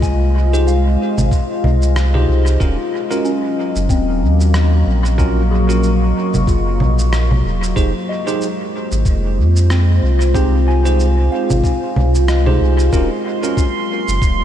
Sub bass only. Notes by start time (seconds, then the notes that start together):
Already playing: C2
1.18 G#1
1.64 C2
2.28 C2
2.61 D#1
3.76 F#1
3.89 D#1
4.22 D#2
4.87 A#1
6.34 F#1
6.47 F#1
6.80 A#1
7.45 D#1
7.76 F1
8.92 G#1
9.05 F1
9.38 F2
10.03 C2
11.50 G#1
11.96 C2
12.61 C2
12.93 D#1
14.08 F#1
14.22 D#1